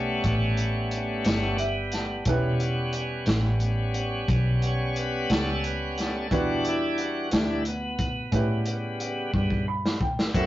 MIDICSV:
0, 0, Header, 1, 5, 480
1, 0, Start_track
1, 0, Tempo, 673401
1, 1621, Time_signature, 12, 3, 24, 8
1, 7458, End_track
2, 0, Start_track
2, 0, Title_t, "Upright piano"
2, 0, Program_c, 0, 0
2, 0, Note_on_c, 0, 61, 48
2, 0, Note_on_c, 0, 64, 40
2, 0, Note_on_c, 0, 67, 45
2, 0, Note_on_c, 0, 73, 52
2, 1137, Note_on_c, 0, 76, 55
2, 1362, Note_off_c, 0, 76, 0
2, 1383, Note_on_c, 0, 81, 49
2, 1587, Note_off_c, 0, 61, 0
2, 1590, Note_off_c, 0, 64, 0
2, 1595, Note_off_c, 0, 67, 0
2, 1596, Note_off_c, 0, 73, 0
2, 1606, Note_off_c, 0, 81, 0
2, 1617, Note_on_c, 0, 61, 55
2, 1624, Note_on_c, 0, 64, 52
2, 1630, Note_on_c, 0, 67, 54
2, 1631, Note_on_c, 0, 71, 62
2, 4471, Note_off_c, 0, 61, 0
2, 4475, Note_off_c, 0, 64, 0
2, 4478, Note_off_c, 0, 67, 0
2, 4478, Note_off_c, 0, 71, 0
2, 4497, Note_on_c, 0, 62, 46
2, 4504, Note_on_c, 0, 66, 45
2, 4506, Note_on_c, 0, 67, 49
2, 4509, Note_on_c, 0, 71, 60
2, 5912, Note_off_c, 0, 62, 0
2, 5915, Note_off_c, 0, 66, 0
2, 5916, Note_off_c, 0, 67, 0
2, 5917, Note_off_c, 0, 71, 0
2, 5929, Note_on_c, 0, 61, 44
2, 5935, Note_on_c, 0, 64, 42
2, 5939, Note_on_c, 0, 67, 40
2, 5947, Note_on_c, 0, 71, 50
2, 6900, Note_on_c, 0, 83, 51
2, 7125, Note_off_c, 0, 83, 0
2, 7143, Note_on_c, 0, 79, 45
2, 7348, Note_off_c, 0, 61, 0
2, 7351, Note_off_c, 0, 64, 0
2, 7353, Note_off_c, 0, 67, 0
2, 7357, Note_off_c, 0, 71, 0
2, 7367, Note_off_c, 0, 79, 0
2, 7380, Note_on_c, 0, 60, 44
2, 7381, Note_on_c, 0, 64, 42
2, 7385, Note_on_c, 0, 66, 41
2, 7393, Note_on_c, 0, 69, 53
2, 7458, Note_off_c, 0, 60, 0
2, 7458, Note_off_c, 0, 64, 0
2, 7458, Note_off_c, 0, 66, 0
2, 7458, Note_off_c, 0, 69, 0
2, 7458, End_track
3, 0, Start_track
3, 0, Title_t, "Tonewheel organ"
3, 0, Program_c, 1, 16
3, 0, Note_on_c, 1, 55, 46
3, 0, Note_on_c, 1, 57, 68
3, 0, Note_on_c, 1, 59, 45
3, 0, Note_on_c, 1, 61, 81
3, 1119, Note_off_c, 1, 57, 0
3, 1124, Note_off_c, 1, 61, 0
3, 1598, Note_off_c, 1, 55, 0
3, 1599, Note_off_c, 1, 59, 0
3, 1615, Note_on_c, 1, 55, 48
3, 1616, Note_on_c, 1, 59, 43
3, 1619, Note_on_c, 1, 61, 57
3, 3329, Note_on_c, 1, 73, 91
3, 3548, Note_off_c, 1, 73, 0
3, 3556, Note_on_c, 1, 71, 83
3, 3782, Note_off_c, 1, 71, 0
3, 3796, Note_on_c, 1, 69, 83
3, 4022, Note_off_c, 1, 69, 0
3, 4039, Note_on_c, 1, 71, 71
3, 4264, Note_off_c, 1, 71, 0
3, 4289, Note_on_c, 1, 69, 85
3, 4470, Note_off_c, 1, 55, 0
3, 4471, Note_off_c, 1, 59, 0
3, 4472, Note_off_c, 1, 61, 0
3, 4501, Note_on_c, 1, 52, 49
3, 4508, Note_off_c, 1, 69, 0
3, 4508, Note_on_c, 1, 55, 45
3, 4519, Note_on_c, 1, 62, 55
3, 4522, Note_on_c, 1, 66, 82
3, 4745, Note_off_c, 1, 66, 0
3, 4767, Note_on_c, 1, 64, 75
3, 4988, Note_off_c, 1, 64, 0
3, 5000, Note_on_c, 1, 66, 73
3, 5193, Note_off_c, 1, 52, 0
3, 5197, Note_off_c, 1, 55, 0
3, 5202, Note_off_c, 1, 62, 0
3, 5220, Note_on_c, 1, 52, 40
3, 5222, Note_on_c, 1, 55, 38
3, 5224, Note_off_c, 1, 66, 0
3, 5228, Note_on_c, 1, 62, 45
3, 5242, Note_on_c, 1, 64, 81
3, 5437, Note_off_c, 1, 52, 0
3, 5438, Note_off_c, 1, 55, 0
3, 5442, Note_off_c, 1, 62, 0
3, 5465, Note_off_c, 1, 64, 0
3, 5477, Note_on_c, 1, 59, 76
3, 5946, Note_off_c, 1, 59, 0
3, 5949, Note_on_c, 1, 49, 50
3, 5951, Note_on_c, 1, 55, 39
3, 5954, Note_on_c, 1, 59, 53
3, 6638, Note_off_c, 1, 49, 0
3, 6639, Note_off_c, 1, 55, 0
3, 6640, Note_off_c, 1, 59, 0
3, 6671, Note_on_c, 1, 55, 36
3, 6673, Note_on_c, 1, 49, 43
3, 6680, Note_on_c, 1, 59, 46
3, 6884, Note_off_c, 1, 55, 0
3, 6885, Note_off_c, 1, 49, 0
3, 6888, Note_off_c, 1, 59, 0
3, 7368, Note_on_c, 1, 52, 42
3, 7373, Note_on_c, 1, 54, 47
3, 7375, Note_on_c, 1, 60, 54
3, 7385, Note_on_c, 1, 76, 81
3, 7458, Note_off_c, 1, 52, 0
3, 7458, Note_off_c, 1, 54, 0
3, 7458, Note_off_c, 1, 60, 0
3, 7458, Note_off_c, 1, 76, 0
3, 7458, End_track
4, 0, Start_track
4, 0, Title_t, "Fingered electric bass"
4, 0, Program_c, 2, 33
4, 0, Note_on_c, 2, 35, 79
4, 159, Note_off_c, 2, 35, 0
4, 174, Note_on_c, 2, 33, 72
4, 876, Note_off_c, 2, 33, 0
4, 897, Note_on_c, 2, 31, 68
4, 1598, Note_off_c, 2, 31, 0
4, 1611, Note_on_c, 2, 28, 73
4, 2314, Note_off_c, 2, 28, 0
4, 2330, Note_on_c, 2, 33, 88
4, 3034, Note_off_c, 2, 33, 0
4, 3053, Note_on_c, 2, 35, 65
4, 3756, Note_off_c, 2, 35, 0
4, 3777, Note_on_c, 2, 37, 72
4, 4478, Note_off_c, 2, 37, 0
4, 4502, Note_on_c, 2, 40, 71
4, 5201, Note_off_c, 2, 40, 0
4, 5225, Note_on_c, 2, 38, 83
4, 5922, Note_off_c, 2, 38, 0
4, 5934, Note_on_c, 2, 45, 71
4, 6637, Note_off_c, 2, 45, 0
4, 6655, Note_on_c, 2, 43, 68
4, 7358, Note_off_c, 2, 43, 0
4, 7373, Note_on_c, 2, 42, 60
4, 7458, Note_off_c, 2, 42, 0
4, 7458, End_track
5, 0, Start_track
5, 0, Title_t, "Drums"
5, 170, Note_on_c, 9, 42, 65
5, 172, Note_on_c, 9, 36, 60
5, 241, Note_off_c, 9, 42, 0
5, 243, Note_off_c, 9, 36, 0
5, 409, Note_on_c, 9, 42, 53
5, 480, Note_off_c, 9, 42, 0
5, 651, Note_on_c, 9, 42, 54
5, 723, Note_off_c, 9, 42, 0
5, 888, Note_on_c, 9, 42, 70
5, 900, Note_on_c, 9, 38, 92
5, 959, Note_off_c, 9, 42, 0
5, 971, Note_off_c, 9, 38, 0
5, 1129, Note_on_c, 9, 42, 58
5, 1200, Note_off_c, 9, 42, 0
5, 1367, Note_on_c, 9, 42, 55
5, 1379, Note_on_c, 9, 38, 29
5, 1438, Note_off_c, 9, 42, 0
5, 1450, Note_off_c, 9, 38, 0
5, 1607, Note_on_c, 9, 42, 84
5, 1610, Note_on_c, 9, 36, 100
5, 1678, Note_off_c, 9, 42, 0
5, 1681, Note_off_c, 9, 36, 0
5, 1853, Note_on_c, 9, 42, 52
5, 1924, Note_off_c, 9, 42, 0
5, 2087, Note_on_c, 9, 42, 54
5, 2158, Note_off_c, 9, 42, 0
5, 2324, Note_on_c, 9, 42, 56
5, 2336, Note_on_c, 9, 38, 81
5, 2395, Note_off_c, 9, 42, 0
5, 2407, Note_off_c, 9, 38, 0
5, 2567, Note_on_c, 9, 42, 43
5, 2638, Note_off_c, 9, 42, 0
5, 2811, Note_on_c, 9, 42, 50
5, 2882, Note_off_c, 9, 42, 0
5, 3054, Note_on_c, 9, 36, 73
5, 3054, Note_on_c, 9, 42, 64
5, 3125, Note_off_c, 9, 36, 0
5, 3125, Note_off_c, 9, 42, 0
5, 3295, Note_on_c, 9, 42, 50
5, 3366, Note_off_c, 9, 42, 0
5, 3536, Note_on_c, 9, 42, 50
5, 3607, Note_off_c, 9, 42, 0
5, 3777, Note_on_c, 9, 42, 66
5, 3789, Note_on_c, 9, 38, 97
5, 3848, Note_off_c, 9, 42, 0
5, 3860, Note_off_c, 9, 38, 0
5, 4020, Note_on_c, 9, 42, 52
5, 4091, Note_off_c, 9, 42, 0
5, 4261, Note_on_c, 9, 42, 52
5, 4273, Note_on_c, 9, 38, 28
5, 4332, Note_off_c, 9, 42, 0
5, 4344, Note_off_c, 9, 38, 0
5, 4499, Note_on_c, 9, 36, 107
5, 4503, Note_on_c, 9, 42, 70
5, 4571, Note_off_c, 9, 36, 0
5, 4575, Note_off_c, 9, 42, 0
5, 4738, Note_on_c, 9, 42, 56
5, 4809, Note_off_c, 9, 42, 0
5, 4975, Note_on_c, 9, 42, 48
5, 5046, Note_off_c, 9, 42, 0
5, 5214, Note_on_c, 9, 42, 65
5, 5226, Note_on_c, 9, 38, 86
5, 5285, Note_off_c, 9, 42, 0
5, 5297, Note_off_c, 9, 38, 0
5, 5454, Note_on_c, 9, 42, 53
5, 5526, Note_off_c, 9, 42, 0
5, 5693, Note_on_c, 9, 42, 58
5, 5695, Note_on_c, 9, 36, 68
5, 5764, Note_off_c, 9, 42, 0
5, 5766, Note_off_c, 9, 36, 0
5, 5932, Note_on_c, 9, 42, 65
5, 5933, Note_on_c, 9, 36, 58
5, 6003, Note_off_c, 9, 42, 0
5, 6004, Note_off_c, 9, 36, 0
5, 6170, Note_on_c, 9, 42, 56
5, 6241, Note_off_c, 9, 42, 0
5, 6416, Note_on_c, 9, 42, 55
5, 6487, Note_off_c, 9, 42, 0
5, 6654, Note_on_c, 9, 36, 57
5, 6726, Note_off_c, 9, 36, 0
5, 6775, Note_on_c, 9, 36, 54
5, 6846, Note_off_c, 9, 36, 0
5, 7025, Note_on_c, 9, 38, 52
5, 7096, Note_off_c, 9, 38, 0
5, 7133, Note_on_c, 9, 36, 82
5, 7204, Note_off_c, 9, 36, 0
5, 7264, Note_on_c, 9, 38, 62
5, 7335, Note_off_c, 9, 38, 0
5, 7373, Note_on_c, 9, 36, 96
5, 7374, Note_on_c, 9, 42, 72
5, 7374, Note_on_c, 9, 49, 71
5, 7445, Note_off_c, 9, 36, 0
5, 7445, Note_off_c, 9, 42, 0
5, 7445, Note_off_c, 9, 49, 0
5, 7458, End_track
0, 0, End_of_file